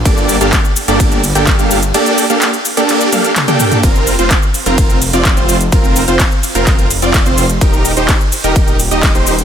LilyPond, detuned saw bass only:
\new Staff \with { instrumentName = "Detuned saw bass" } { \clef bass \time 4/4 \key g \minor \tempo 4 = 127 g,,8. g,,16 r8. g,,4 g,,8 g,,8. | r1 | f,,8. f,,16 r8. f,,4 f,,8 f,,8. | f,,8. f,,16 r8. f,,4 f,,8 f,,8. |
ees,,8. ees,,16 r8. ees,,4 ees,,8 ees,,8. | }